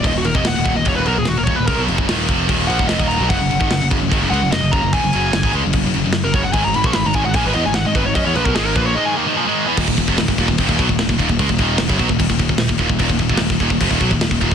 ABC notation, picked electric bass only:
X:1
M:4/4
L:1/16
Q:1/4=148
K:Ebm
V:1 name="Picked electric bass" clef=bass
E,,, E,,, E,,, F,,, E,,, E,,, E,,, E,,, F,,, E,,, C,, E,,, E,,, E,,, E,,, E,,, | D,, C,, F,,, G,,, E,,,2 F,,,2 E,,,2 B,,, E,,, F,,, E,,,2 C,, | G,,, G,,, G,,, A,,, G,,, G,,, G,,, G,,, A,,, G,,, D,, G,,, G,,, G,,, G,,, G,,, | _F,,, G,,, G,,,2 G,,, A,,, D,, G,,, G,,, G,,, G,,, G,,,2 G,,, G,,, G,,, |
A,,, A,,, A,,, B,,, A,,, A,,, A,,, A,,, B,,, A,,, _F,, A,,, A,,, A,,, A,,, A,,, | G,, _F,, B,,, C,, A,,,2 B,,,2 z8 | E,,, E,,, E,,, F,,, E,,, E,,, E,,, E,,, F,,, E,,, C,, E,,, E,,, E,,, E,,, E,,, | D,, E,,, E,,,2 E,,, G,,, C,, E,,, E,,, E,,, E,,, E,,,2 E,,, E,,, E,,, |
E,,, E,,, E,,, F,,, E,,, E,,, E,,, E,,, F,,, E,,, C,, E,,, E,,, E,,, E,,, E,,, |]